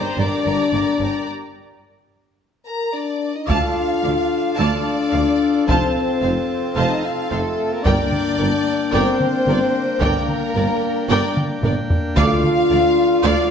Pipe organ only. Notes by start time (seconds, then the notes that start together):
3.50 D4 F4 A4 F5
5.69 C4 A5
7.85 A#3 D4 A#4 G5
12.16 A3 D4 F4 F5